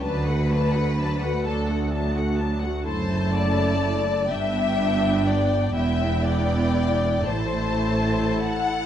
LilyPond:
<<
  \new Staff \with { instrumentName = "Violin section" } { \time 6/8 \key d \major \tempo 4. = 42 a''16 fis''16 a''16 fis''16 a''16 fis''16 a''16 fis''16 a''16 fis''16 a''16 fis''16 | \key g \major a''4. g''4. | g''4. a''4. | }
  \new Staff \with { instrumentName = "Violin section" } { \time 6/8 \key d \major b'4. a'8 r4 | \key g \major c''8 d''4 e''4 d''8 | e''8 d''4 c''4 fis''8 | }
  \new Staff \with { instrumentName = "Viola section" } { \time 6/8 \key d \major <fis d'>16 <a fis'>16 <fis d'>16 <a fis'>16 <fis d'>16 <a fis'>16 <fis d'>16 <a fis'>16 <fis d'>16 <a fis'>16 <fis d'>16 <a fis'>16 | \key g \major <a e'>4. <b d'>4. | <b e'>4. <a e'>4. | }
  \new Staff \with { instrumentName = "Cello section" } { \clef bass \time 6/8 \key d \major d,4. d,4. | \key g \major fis,4. g,4. | e,4. a,4. | }
  \new Staff \with { instrumentName = "Double bass section" } { \clef bass \time 6/8 \key d \major d,4. d,4. | \key g \major fis,,4. g,,4. | e,,4. a,,4. | }
>>